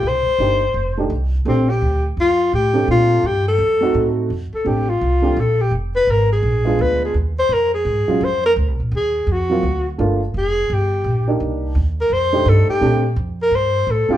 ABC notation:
X:1
M:4/4
L:1/16
Q:"Swing" 1/4=169
K:Bb
V:1 name="Alto saxophone"
c8- c3 z4 z | C2 G4 z2 F4 G4 | F4 G2 A8 z2 | z2 A2 G2 F6 A2 G2 |
z2 _c2 B2 _A6 c2 A2 | z2 c2 B2 _A6 c2 B2 | z4 _A4 ^F6 z2 | z4 _A4 G6 z2 |
z6 B2 c4 A2 G2- | G4 z2 B2 c4 A2 G2 |]
V:2 name="Upright piano"
z4 [B,DEG]2 z4 [A,DEG]2 z4 | [A,CDG]2 z12 [A,CDG]2- | [A,CDG]4 z6 [A,CE_G]6 | z4 [A,CDG]2 z4 [A,CDG]2 z4 |
z8 z2 [_A,_CDF]6 | z8 z2 [_G,_A,_DF]2 z4 | z8 z2 [^F,^A,C^E]2 z4 | [A,B,DF]2 z12 [B,DEG]2- |
[B,DEG]4 z6 [A,DEG]6 | [A,CDG]2 z12 [A,CDF]2 |]
V:3 name="Upright bass" clef=bass
C,,2 z2 G,,,4 F,,,4 C,,4 | B,,,4 D,,4 F,,4 A,,4 | B,,4 G,,4 F,,4 A,,4 | F,,2 z2 A,,,4 C,,4 B,,,4 |
F,,,4 _A,,,4 B,,,4 D,,4 | E,,4 F,,4 _A,,2 z2 F,,4 | (3D,,2 C,,2 ^A,,,2 E,,4 ^E,,4 D,,4 | G,,,4 F,,,4 G,,,4 B,,,4 |
C,,4 E,,4 F,,4 G,,2 z2 | B,,4 F,,4 G,,4 A,,2 z2 |]